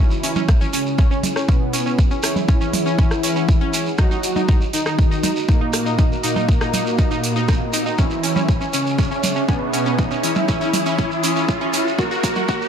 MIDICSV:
0, 0, Header, 1, 10, 480
1, 0, Start_track
1, 0, Tempo, 500000
1, 1907, Time_signature, 4, 2, 24, 8
1, 12176, End_track
2, 0, Start_track
2, 0, Title_t, "Ambient pad"
2, 0, Program_c, 0, 92
2, 0, Note_on_c, 0, 64, 80
2, 0, Note_on_c, 0, 68, 74
2, 0, Note_on_c, 0, 73, 73
2, 0, Note_on_c, 0, 80, 90
2, 1886, Note_off_c, 0, 80, 0
2, 1905, Note_on_c, 0, 78, 90
2, 3786, Note_off_c, 0, 64, 0
2, 3787, Note_off_c, 0, 68, 0
2, 3787, Note_off_c, 0, 73, 0
2, 3806, Note_off_c, 0, 78, 0
2, 3826, Note_on_c, 0, 66, 86
2, 3826, Note_on_c, 0, 70, 76
2, 3826, Note_on_c, 0, 75, 74
2, 3826, Note_on_c, 0, 82, 94
2, 7627, Note_off_c, 0, 75, 0
2, 7628, Note_off_c, 0, 66, 0
2, 7628, Note_off_c, 0, 70, 0
2, 7628, Note_off_c, 0, 82, 0
2, 7663, Note_on_c, 0, 68, 84
2, 7663, Note_on_c, 0, 73, 78
2, 7663, Note_on_c, 0, 76, 75
2, 7664, Note_on_c, 0, 85, 95
2, 9566, Note_off_c, 0, 85, 0
2, 9587, Note_on_c, 0, 87, 95
2, 11466, Note_off_c, 0, 68, 0
2, 11466, Note_off_c, 0, 73, 0
2, 11466, Note_off_c, 0, 76, 0
2, 11487, Note_off_c, 0, 87, 0
2, 11505, Note_on_c, 0, 85, 97
2, 11506, Note_on_c, 0, 70, 84
2, 11506, Note_on_c, 0, 73, 77
2, 11506, Note_on_c, 0, 78, 79
2, 12176, Note_off_c, 0, 70, 0
2, 12176, Note_off_c, 0, 73, 0
2, 12176, Note_off_c, 0, 78, 0
2, 12176, Note_off_c, 0, 85, 0
2, 12176, End_track
3, 0, Start_track
3, 0, Title_t, "Supersaw synth"
3, 0, Program_c, 1, 81
3, 0, Note_on_c, 1, 64, 106
3, 610, Note_off_c, 1, 64, 0
3, 706, Note_on_c, 1, 61, 100
3, 1331, Note_off_c, 1, 61, 0
3, 1426, Note_on_c, 1, 59, 97
3, 2051, Note_off_c, 1, 59, 0
3, 2146, Note_on_c, 1, 64, 103
3, 3731, Note_off_c, 1, 64, 0
3, 3825, Note_on_c, 1, 66, 107
3, 4450, Note_off_c, 1, 66, 0
3, 4546, Note_on_c, 1, 63, 97
3, 5171, Note_off_c, 1, 63, 0
3, 5266, Note_on_c, 1, 58, 97
3, 5891, Note_off_c, 1, 58, 0
3, 5984, Note_on_c, 1, 58, 105
3, 7570, Note_off_c, 1, 58, 0
3, 7666, Note_on_c, 1, 64, 106
3, 8291, Note_off_c, 1, 64, 0
3, 8386, Note_on_c, 1, 61, 99
3, 9011, Note_off_c, 1, 61, 0
3, 9106, Note_on_c, 1, 59, 103
3, 9731, Note_off_c, 1, 59, 0
3, 9826, Note_on_c, 1, 64, 106
3, 11411, Note_off_c, 1, 64, 0
3, 11505, Note_on_c, 1, 70, 106
3, 12131, Note_off_c, 1, 70, 0
3, 12176, End_track
4, 0, Start_track
4, 0, Title_t, "Synth pluck"
4, 0, Program_c, 2, 84
4, 225, Note_on_c, 2, 61, 98
4, 289, Note_off_c, 2, 61, 0
4, 345, Note_on_c, 2, 61, 101
4, 408, Note_off_c, 2, 61, 0
4, 584, Note_on_c, 2, 61, 96
4, 648, Note_off_c, 2, 61, 0
4, 703, Note_on_c, 2, 61, 98
4, 768, Note_off_c, 2, 61, 0
4, 943, Note_on_c, 2, 61, 102
4, 1008, Note_off_c, 2, 61, 0
4, 1064, Note_on_c, 2, 61, 102
4, 1128, Note_off_c, 2, 61, 0
4, 1304, Note_on_c, 2, 61, 94
4, 1368, Note_off_c, 2, 61, 0
4, 1423, Note_on_c, 2, 61, 95
4, 1488, Note_off_c, 2, 61, 0
4, 1664, Note_on_c, 2, 61, 97
4, 1728, Note_off_c, 2, 61, 0
4, 1785, Note_on_c, 2, 61, 96
4, 1848, Note_off_c, 2, 61, 0
4, 2024, Note_on_c, 2, 61, 96
4, 2088, Note_off_c, 2, 61, 0
4, 2144, Note_on_c, 2, 61, 99
4, 2208, Note_off_c, 2, 61, 0
4, 2383, Note_on_c, 2, 61, 99
4, 2448, Note_off_c, 2, 61, 0
4, 2504, Note_on_c, 2, 61, 97
4, 2568, Note_off_c, 2, 61, 0
4, 2744, Note_on_c, 2, 61, 103
4, 2808, Note_off_c, 2, 61, 0
4, 2864, Note_on_c, 2, 61, 101
4, 2928, Note_off_c, 2, 61, 0
4, 3104, Note_on_c, 2, 61, 103
4, 3168, Note_off_c, 2, 61, 0
4, 3226, Note_on_c, 2, 61, 96
4, 3289, Note_off_c, 2, 61, 0
4, 3465, Note_on_c, 2, 61, 98
4, 3528, Note_off_c, 2, 61, 0
4, 3585, Note_on_c, 2, 61, 99
4, 3649, Note_off_c, 2, 61, 0
4, 3825, Note_on_c, 2, 63, 100
4, 3889, Note_off_c, 2, 63, 0
4, 3945, Note_on_c, 2, 63, 99
4, 4008, Note_off_c, 2, 63, 0
4, 4186, Note_on_c, 2, 63, 98
4, 4249, Note_off_c, 2, 63, 0
4, 4305, Note_on_c, 2, 63, 106
4, 4369, Note_off_c, 2, 63, 0
4, 4545, Note_on_c, 2, 63, 102
4, 4609, Note_off_c, 2, 63, 0
4, 4666, Note_on_c, 2, 63, 105
4, 4729, Note_off_c, 2, 63, 0
4, 4907, Note_on_c, 2, 63, 101
4, 4969, Note_off_c, 2, 63, 0
4, 5026, Note_on_c, 2, 63, 95
4, 5089, Note_off_c, 2, 63, 0
4, 5266, Note_on_c, 2, 63, 98
4, 5329, Note_off_c, 2, 63, 0
4, 5387, Note_on_c, 2, 63, 101
4, 5449, Note_off_c, 2, 63, 0
4, 5626, Note_on_c, 2, 63, 98
4, 5689, Note_off_c, 2, 63, 0
4, 5745, Note_on_c, 2, 63, 99
4, 5809, Note_off_c, 2, 63, 0
4, 5985, Note_on_c, 2, 63, 99
4, 6049, Note_off_c, 2, 63, 0
4, 6106, Note_on_c, 2, 63, 102
4, 6169, Note_off_c, 2, 63, 0
4, 6345, Note_on_c, 2, 63, 99
4, 6408, Note_off_c, 2, 63, 0
4, 6464, Note_on_c, 2, 63, 102
4, 6529, Note_off_c, 2, 63, 0
4, 6704, Note_on_c, 2, 63, 99
4, 6768, Note_off_c, 2, 63, 0
4, 6825, Note_on_c, 2, 63, 101
4, 6888, Note_off_c, 2, 63, 0
4, 7064, Note_on_c, 2, 63, 101
4, 7128, Note_off_c, 2, 63, 0
4, 7184, Note_on_c, 2, 63, 99
4, 7248, Note_off_c, 2, 63, 0
4, 7423, Note_on_c, 2, 63, 99
4, 7488, Note_off_c, 2, 63, 0
4, 7545, Note_on_c, 2, 63, 101
4, 7608, Note_off_c, 2, 63, 0
4, 7663, Note_on_c, 2, 61, 101
4, 7728, Note_off_c, 2, 61, 0
4, 7904, Note_on_c, 2, 61, 95
4, 7968, Note_off_c, 2, 61, 0
4, 8025, Note_on_c, 2, 61, 102
4, 8088, Note_off_c, 2, 61, 0
4, 8265, Note_on_c, 2, 61, 100
4, 8328, Note_off_c, 2, 61, 0
4, 8384, Note_on_c, 2, 61, 106
4, 8448, Note_off_c, 2, 61, 0
4, 8624, Note_on_c, 2, 61, 102
4, 8688, Note_off_c, 2, 61, 0
4, 8746, Note_on_c, 2, 61, 101
4, 8809, Note_off_c, 2, 61, 0
4, 8985, Note_on_c, 2, 61, 100
4, 9048, Note_off_c, 2, 61, 0
4, 9104, Note_on_c, 2, 61, 100
4, 9168, Note_off_c, 2, 61, 0
4, 9344, Note_on_c, 2, 61, 103
4, 9408, Note_off_c, 2, 61, 0
4, 9465, Note_on_c, 2, 61, 102
4, 9528, Note_off_c, 2, 61, 0
4, 9705, Note_on_c, 2, 61, 97
4, 9768, Note_off_c, 2, 61, 0
4, 9824, Note_on_c, 2, 61, 100
4, 9888, Note_off_c, 2, 61, 0
4, 10064, Note_on_c, 2, 61, 106
4, 10128, Note_off_c, 2, 61, 0
4, 10186, Note_on_c, 2, 61, 97
4, 10249, Note_off_c, 2, 61, 0
4, 10425, Note_on_c, 2, 61, 107
4, 10488, Note_off_c, 2, 61, 0
4, 10545, Note_on_c, 2, 61, 101
4, 10609, Note_off_c, 2, 61, 0
4, 10785, Note_on_c, 2, 61, 102
4, 10849, Note_off_c, 2, 61, 0
4, 10906, Note_on_c, 2, 61, 100
4, 10969, Note_off_c, 2, 61, 0
4, 11146, Note_on_c, 2, 61, 103
4, 11209, Note_off_c, 2, 61, 0
4, 11265, Note_on_c, 2, 61, 100
4, 11329, Note_off_c, 2, 61, 0
4, 11505, Note_on_c, 2, 66, 101
4, 11569, Note_off_c, 2, 66, 0
4, 11626, Note_on_c, 2, 66, 101
4, 11689, Note_off_c, 2, 66, 0
4, 11866, Note_on_c, 2, 66, 103
4, 11929, Note_off_c, 2, 66, 0
4, 11985, Note_on_c, 2, 66, 104
4, 12049, Note_off_c, 2, 66, 0
4, 12176, End_track
5, 0, Start_track
5, 0, Title_t, "Analog polysynth"
5, 0, Program_c, 3, 90
5, 0, Note_on_c, 3, 52, 104
5, 611, Note_off_c, 3, 52, 0
5, 705, Note_on_c, 3, 49, 98
5, 1330, Note_off_c, 3, 49, 0
5, 1426, Note_on_c, 3, 47, 98
5, 2051, Note_off_c, 3, 47, 0
5, 2146, Note_on_c, 3, 52, 114
5, 3731, Note_off_c, 3, 52, 0
5, 3826, Note_on_c, 3, 54, 103
5, 4451, Note_off_c, 3, 54, 0
5, 4546, Note_on_c, 3, 51, 101
5, 5171, Note_off_c, 3, 51, 0
5, 5265, Note_on_c, 3, 46, 98
5, 5890, Note_off_c, 3, 46, 0
5, 5984, Note_on_c, 3, 46, 115
5, 7570, Note_off_c, 3, 46, 0
5, 7666, Note_on_c, 3, 52, 105
5, 8291, Note_off_c, 3, 52, 0
5, 8385, Note_on_c, 3, 49, 104
5, 9010, Note_off_c, 3, 49, 0
5, 9106, Note_on_c, 3, 47, 99
5, 9731, Note_off_c, 3, 47, 0
5, 9825, Note_on_c, 3, 52, 110
5, 11410, Note_off_c, 3, 52, 0
5, 11506, Note_on_c, 3, 58, 108
5, 12131, Note_off_c, 3, 58, 0
5, 12176, End_track
6, 0, Start_track
6, 0, Title_t, "Analog synth bass"
6, 0, Program_c, 4, 38
6, 0, Note_on_c, 4, 37, 86
6, 3802, Note_off_c, 4, 37, 0
6, 3826, Note_on_c, 4, 39, 88
6, 7642, Note_off_c, 4, 39, 0
6, 7666, Note_on_c, 4, 37, 86
6, 11482, Note_off_c, 4, 37, 0
6, 11506, Note_on_c, 4, 30, 89
6, 12176, Note_off_c, 4, 30, 0
6, 12176, End_track
7, 0, Start_track
7, 0, Title_t, "Riser"
7, 0, Program_c, 5, 103
7, 0, Note_on_c, 5, 60, 77
7, 12176, Note_off_c, 5, 60, 0
7, 12176, End_track
8, 0, Start_track
8, 0, Title_t, "Percussion blips"
8, 347, Note_on_c, 9, 64, 74
8, 443, Note_off_c, 9, 64, 0
8, 1185, Note_on_c, 9, 64, 75
8, 1281, Note_off_c, 9, 64, 0
8, 2266, Note_on_c, 9, 64, 75
8, 2362, Note_off_c, 9, 64, 0
8, 2625, Note_on_c, 9, 64, 77
8, 2721, Note_off_c, 9, 64, 0
8, 4186, Note_on_c, 9, 64, 74
8, 4282, Note_off_c, 9, 64, 0
8, 5026, Note_on_c, 9, 64, 73
8, 5122, Note_off_c, 9, 64, 0
8, 6107, Note_on_c, 9, 64, 76
8, 6203, Note_off_c, 9, 64, 0
8, 6466, Note_on_c, 9, 64, 77
8, 6562, Note_off_c, 9, 64, 0
8, 8027, Note_on_c, 9, 64, 78
8, 8123, Note_off_c, 9, 64, 0
8, 8866, Note_on_c, 9, 64, 80
8, 8962, Note_off_c, 9, 64, 0
8, 9947, Note_on_c, 9, 64, 82
8, 10043, Note_off_c, 9, 64, 0
8, 10305, Note_on_c, 9, 64, 85
8, 10401, Note_off_c, 9, 64, 0
8, 11867, Note_on_c, 9, 64, 82
8, 11963, Note_off_c, 9, 64, 0
8, 12176, End_track
9, 0, Start_track
9, 0, Title_t, "Shekere"
9, 100, Note_on_c, 9, 82, 32
9, 196, Note_off_c, 9, 82, 0
9, 230, Note_on_c, 9, 82, 86
9, 326, Note_off_c, 9, 82, 0
9, 341, Note_on_c, 9, 82, 35
9, 437, Note_off_c, 9, 82, 0
9, 466, Note_on_c, 9, 82, 49
9, 562, Note_off_c, 9, 82, 0
9, 587, Note_on_c, 9, 82, 34
9, 683, Note_off_c, 9, 82, 0
9, 704, Note_on_c, 9, 82, 80
9, 800, Note_off_c, 9, 82, 0
9, 826, Note_on_c, 9, 82, 35
9, 922, Note_off_c, 9, 82, 0
9, 943, Note_on_c, 9, 82, 47
9, 1039, Note_off_c, 9, 82, 0
9, 1069, Note_on_c, 9, 82, 30
9, 1165, Note_off_c, 9, 82, 0
9, 1190, Note_on_c, 9, 82, 86
9, 1286, Note_off_c, 9, 82, 0
9, 1314, Note_on_c, 9, 82, 38
9, 1410, Note_off_c, 9, 82, 0
9, 1430, Note_on_c, 9, 82, 45
9, 1526, Note_off_c, 9, 82, 0
9, 1669, Note_on_c, 9, 82, 84
9, 1765, Note_off_c, 9, 82, 0
9, 1788, Note_on_c, 9, 82, 34
9, 1884, Note_off_c, 9, 82, 0
9, 1910, Note_on_c, 9, 82, 47
9, 2006, Note_off_c, 9, 82, 0
9, 2024, Note_on_c, 9, 82, 37
9, 2120, Note_off_c, 9, 82, 0
9, 2140, Note_on_c, 9, 82, 98
9, 2236, Note_off_c, 9, 82, 0
9, 2268, Note_on_c, 9, 82, 37
9, 2364, Note_off_c, 9, 82, 0
9, 2384, Note_on_c, 9, 82, 50
9, 2480, Note_off_c, 9, 82, 0
9, 2507, Note_on_c, 9, 82, 38
9, 2603, Note_off_c, 9, 82, 0
9, 2626, Note_on_c, 9, 82, 92
9, 2722, Note_off_c, 9, 82, 0
9, 2753, Note_on_c, 9, 82, 38
9, 2849, Note_off_c, 9, 82, 0
9, 2868, Note_on_c, 9, 82, 53
9, 2964, Note_off_c, 9, 82, 0
9, 2986, Note_on_c, 9, 82, 35
9, 3082, Note_off_c, 9, 82, 0
9, 3109, Note_on_c, 9, 82, 85
9, 3205, Note_off_c, 9, 82, 0
9, 3226, Note_on_c, 9, 82, 37
9, 3322, Note_off_c, 9, 82, 0
9, 3350, Note_on_c, 9, 82, 55
9, 3446, Note_off_c, 9, 82, 0
9, 3586, Note_on_c, 9, 82, 96
9, 3682, Note_off_c, 9, 82, 0
9, 3708, Note_on_c, 9, 82, 42
9, 3804, Note_off_c, 9, 82, 0
9, 3822, Note_on_c, 9, 82, 48
9, 3918, Note_off_c, 9, 82, 0
9, 3950, Note_on_c, 9, 82, 37
9, 4046, Note_off_c, 9, 82, 0
9, 4064, Note_on_c, 9, 82, 91
9, 4160, Note_off_c, 9, 82, 0
9, 4189, Note_on_c, 9, 82, 38
9, 4285, Note_off_c, 9, 82, 0
9, 4305, Note_on_c, 9, 82, 48
9, 4401, Note_off_c, 9, 82, 0
9, 4426, Note_on_c, 9, 82, 35
9, 4522, Note_off_c, 9, 82, 0
9, 4549, Note_on_c, 9, 82, 89
9, 4645, Note_off_c, 9, 82, 0
9, 4666, Note_on_c, 9, 82, 40
9, 4762, Note_off_c, 9, 82, 0
9, 4791, Note_on_c, 9, 82, 49
9, 4887, Note_off_c, 9, 82, 0
9, 4910, Note_on_c, 9, 82, 37
9, 5006, Note_off_c, 9, 82, 0
9, 5024, Note_on_c, 9, 82, 100
9, 5120, Note_off_c, 9, 82, 0
9, 5145, Note_on_c, 9, 82, 41
9, 5241, Note_off_c, 9, 82, 0
9, 5266, Note_on_c, 9, 82, 51
9, 5362, Note_off_c, 9, 82, 0
9, 5501, Note_on_c, 9, 82, 90
9, 5597, Note_off_c, 9, 82, 0
9, 5626, Note_on_c, 9, 82, 38
9, 5722, Note_off_c, 9, 82, 0
9, 5745, Note_on_c, 9, 82, 53
9, 5841, Note_off_c, 9, 82, 0
9, 5877, Note_on_c, 9, 82, 32
9, 5973, Note_off_c, 9, 82, 0
9, 5990, Note_on_c, 9, 82, 85
9, 6086, Note_off_c, 9, 82, 0
9, 6111, Note_on_c, 9, 82, 35
9, 6207, Note_off_c, 9, 82, 0
9, 6230, Note_on_c, 9, 82, 48
9, 6326, Note_off_c, 9, 82, 0
9, 6352, Note_on_c, 9, 82, 35
9, 6448, Note_off_c, 9, 82, 0
9, 6466, Note_on_c, 9, 82, 89
9, 6562, Note_off_c, 9, 82, 0
9, 6592, Note_on_c, 9, 82, 38
9, 6688, Note_off_c, 9, 82, 0
9, 6706, Note_on_c, 9, 82, 50
9, 6802, Note_off_c, 9, 82, 0
9, 6827, Note_on_c, 9, 82, 38
9, 6923, Note_off_c, 9, 82, 0
9, 6948, Note_on_c, 9, 82, 90
9, 7044, Note_off_c, 9, 82, 0
9, 7067, Note_on_c, 9, 82, 36
9, 7163, Note_off_c, 9, 82, 0
9, 7185, Note_on_c, 9, 82, 53
9, 7281, Note_off_c, 9, 82, 0
9, 7421, Note_on_c, 9, 82, 90
9, 7517, Note_off_c, 9, 82, 0
9, 7547, Note_on_c, 9, 82, 42
9, 7643, Note_off_c, 9, 82, 0
9, 7662, Note_on_c, 9, 82, 53
9, 7758, Note_off_c, 9, 82, 0
9, 7781, Note_on_c, 9, 82, 33
9, 7877, Note_off_c, 9, 82, 0
9, 7908, Note_on_c, 9, 82, 96
9, 8004, Note_off_c, 9, 82, 0
9, 8026, Note_on_c, 9, 82, 40
9, 8122, Note_off_c, 9, 82, 0
9, 8148, Note_on_c, 9, 82, 45
9, 8244, Note_off_c, 9, 82, 0
9, 8267, Note_on_c, 9, 82, 35
9, 8363, Note_off_c, 9, 82, 0
9, 8384, Note_on_c, 9, 82, 84
9, 8480, Note_off_c, 9, 82, 0
9, 8511, Note_on_c, 9, 82, 37
9, 8607, Note_off_c, 9, 82, 0
9, 8626, Note_on_c, 9, 82, 51
9, 8722, Note_off_c, 9, 82, 0
9, 8748, Note_on_c, 9, 82, 31
9, 8844, Note_off_c, 9, 82, 0
9, 8866, Note_on_c, 9, 82, 99
9, 8962, Note_off_c, 9, 82, 0
9, 8979, Note_on_c, 9, 82, 35
9, 9075, Note_off_c, 9, 82, 0
9, 9108, Note_on_c, 9, 82, 50
9, 9204, Note_off_c, 9, 82, 0
9, 9345, Note_on_c, 9, 82, 91
9, 9441, Note_off_c, 9, 82, 0
9, 9461, Note_on_c, 9, 82, 37
9, 9557, Note_off_c, 9, 82, 0
9, 9584, Note_on_c, 9, 82, 52
9, 9680, Note_off_c, 9, 82, 0
9, 9705, Note_on_c, 9, 82, 35
9, 9801, Note_off_c, 9, 82, 0
9, 9828, Note_on_c, 9, 82, 81
9, 9924, Note_off_c, 9, 82, 0
9, 9938, Note_on_c, 9, 82, 38
9, 10034, Note_off_c, 9, 82, 0
9, 10067, Note_on_c, 9, 82, 53
9, 10163, Note_off_c, 9, 82, 0
9, 10190, Note_on_c, 9, 82, 34
9, 10286, Note_off_c, 9, 82, 0
9, 10306, Note_on_c, 9, 82, 84
9, 10402, Note_off_c, 9, 82, 0
9, 10424, Note_on_c, 9, 82, 38
9, 10520, Note_off_c, 9, 82, 0
9, 10544, Note_on_c, 9, 82, 51
9, 10640, Note_off_c, 9, 82, 0
9, 10664, Note_on_c, 9, 82, 33
9, 10760, Note_off_c, 9, 82, 0
9, 10787, Note_on_c, 9, 82, 93
9, 10883, Note_off_c, 9, 82, 0
9, 10912, Note_on_c, 9, 82, 34
9, 11008, Note_off_c, 9, 82, 0
9, 11032, Note_on_c, 9, 82, 47
9, 11128, Note_off_c, 9, 82, 0
9, 11261, Note_on_c, 9, 82, 89
9, 11357, Note_off_c, 9, 82, 0
9, 11398, Note_on_c, 9, 82, 39
9, 11494, Note_off_c, 9, 82, 0
9, 11512, Note_on_c, 9, 82, 52
9, 11608, Note_off_c, 9, 82, 0
9, 11630, Note_on_c, 9, 82, 31
9, 11726, Note_off_c, 9, 82, 0
9, 11748, Note_on_c, 9, 82, 92
9, 11844, Note_off_c, 9, 82, 0
9, 11858, Note_on_c, 9, 82, 38
9, 11954, Note_off_c, 9, 82, 0
9, 11983, Note_on_c, 9, 82, 52
9, 12079, Note_off_c, 9, 82, 0
9, 12110, Note_on_c, 9, 82, 33
9, 12176, Note_off_c, 9, 82, 0
9, 12176, End_track
10, 0, Start_track
10, 0, Title_t, "Drums"
10, 226, Note_on_c, 9, 46, 99
10, 322, Note_off_c, 9, 46, 0
10, 466, Note_on_c, 9, 36, 116
10, 466, Note_on_c, 9, 37, 47
10, 562, Note_off_c, 9, 36, 0
10, 562, Note_off_c, 9, 37, 0
10, 705, Note_on_c, 9, 46, 94
10, 801, Note_off_c, 9, 46, 0
10, 946, Note_on_c, 9, 36, 114
10, 1042, Note_off_c, 9, 36, 0
10, 1185, Note_on_c, 9, 46, 98
10, 1281, Note_off_c, 9, 46, 0
10, 1306, Note_on_c, 9, 37, 47
10, 1402, Note_off_c, 9, 37, 0
10, 1426, Note_on_c, 9, 36, 109
10, 1522, Note_off_c, 9, 36, 0
10, 1665, Note_on_c, 9, 46, 101
10, 1761, Note_off_c, 9, 46, 0
10, 1906, Note_on_c, 9, 36, 117
10, 2002, Note_off_c, 9, 36, 0
10, 2146, Note_on_c, 9, 37, 49
10, 2146, Note_on_c, 9, 46, 104
10, 2242, Note_off_c, 9, 37, 0
10, 2242, Note_off_c, 9, 46, 0
10, 2386, Note_on_c, 9, 36, 123
10, 2482, Note_off_c, 9, 36, 0
10, 2625, Note_on_c, 9, 46, 104
10, 2721, Note_off_c, 9, 46, 0
10, 2866, Note_on_c, 9, 36, 116
10, 2962, Note_off_c, 9, 36, 0
10, 2987, Note_on_c, 9, 37, 47
10, 3083, Note_off_c, 9, 37, 0
10, 3105, Note_on_c, 9, 46, 105
10, 3201, Note_off_c, 9, 46, 0
10, 3346, Note_on_c, 9, 36, 111
10, 3442, Note_off_c, 9, 36, 0
10, 3585, Note_on_c, 9, 46, 107
10, 3681, Note_off_c, 9, 46, 0
10, 3825, Note_on_c, 9, 37, 50
10, 3826, Note_on_c, 9, 36, 116
10, 3921, Note_off_c, 9, 37, 0
10, 3922, Note_off_c, 9, 36, 0
10, 4065, Note_on_c, 9, 46, 105
10, 4161, Note_off_c, 9, 46, 0
10, 4306, Note_on_c, 9, 36, 123
10, 4402, Note_off_c, 9, 36, 0
10, 4545, Note_on_c, 9, 46, 108
10, 4641, Note_off_c, 9, 46, 0
10, 4666, Note_on_c, 9, 37, 51
10, 4762, Note_off_c, 9, 37, 0
10, 4786, Note_on_c, 9, 36, 120
10, 4882, Note_off_c, 9, 36, 0
10, 5026, Note_on_c, 9, 46, 107
10, 5122, Note_off_c, 9, 46, 0
10, 5266, Note_on_c, 9, 36, 114
10, 5362, Note_off_c, 9, 36, 0
10, 5505, Note_on_c, 9, 37, 49
10, 5505, Note_on_c, 9, 46, 107
10, 5601, Note_off_c, 9, 37, 0
10, 5601, Note_off_c, 9, 46, 0
10, 5746, Note_on_c, 9, 36, 117
10, 5842, Note_off_c, 9, 36, 0
10, 5986, Note_on_c, 9, 46, 100
10, 6082, Note_off_c, 9, 46, 0
10, 6226, Note_on_c, 9, 36, 123
10, 6322, Note_off_c, 9, 36, 0
10, 6347, Note_on_c, 9, 37, 53
10, 6443, Note_off_c, 9, 37, 0
10, 6466, Note_on_c, 9, 46, 102
10, 6562, Note_off_c, 9, 46, 0
10, 6706, Note_on_c, 9, 36, 116
10, 6802, Note_off_c, 9, 36, 0
10, 6946, Note_on_c, 9, 46, 107
10, 7042, Note_off_c, 9, 46, 0
10, 7186, Note_on_c, 9, 36, 116
10, 7187, Note_on_c, 9, 37, 53
10, 7282, Note_off_c, 9, 36, 0
10, 7283, Note_off_c, 9, 37, 0
10, 7426, Note_on_c, 9, 46, 109
10, 7522, Note_off_c, 9, 46, 0
10, 7666, Note_on_c, 9, 36, 100
10, 7762, Note_off_c, 9, 36, 0
10, 7906, Note_on_c, 9, 46, 103
10, 8002, Note_off_c, 9, 46, 0
10, 8146, Note_on_c, 9, 36, 106
10, 8242, Note_off_c, 9, 36, 0
10, 8385, Note_on_c, 9, 46, 101
10, 8481, Note_off_c, 9, 46, 0
10, 8626, Note_on_c, 9, 36, 103
10, 8722, Note_off_c, 9, 36, 0
10, 8866, Note_on_c, 9, 46, 103
10, 8962, Note_off_c, 9, 46, 0
10, 9106, Note_on_c, 9, 36, 100
10, 9202, Note_off_c, 9, 36, 0
10, 9346, Note_on_c, 9, 46, 104
10, 9442, Note_off_c, 9, 46, 0
10, 9586, Note_on_c, 9, 36, 98
10, 9682, Note_off_c, 9, 36, 0
10, 9826, Note_on_c, 9, 46, 99
10, 9922, Note_off_c, 9, 46, 0
10, 10066, Note_on_c, 9, 36, 106
10, 10162, Note_off_c, 9, 36, 0
10, 10305, Note_on_c, 9, 46, 101
10, 10401, Note_off_c, 9, 46, 0
10, 10546, Note_on_c, 9, 36, 104
10, 10642, Note_off_c, 9, 36, 0
10, 10786, Note_on_c, 9, 46, 102
10, 10882, Note_off_c, 9, 46, 0
10, 11026, Note_on_c, 9, 36, 99
10, 11122, Note_off_c, 9, 36, 0
10, 11266, Note_on_c, 9, 46, 101
10, 11362, Note_off_c, 9, 46, 0
10, 11506, Note_on_c, 9, 36, 105
10, 11602, Note_off_c, 9, 36, 0
10, 11745, Note_on_c, 9, 46, 101
10, 11746, Note_on_c, 9, 36, 105
10, 11841, Note_off_c, 9, 46, 0
10, 11842, Note_off_c, 9, 36, 0
10, 11986, Note_on_c, 9, 36, 107
10, 12082, Note_off_c, 9, 36, 0
10, 12176, End_track
0, 0, End_of_file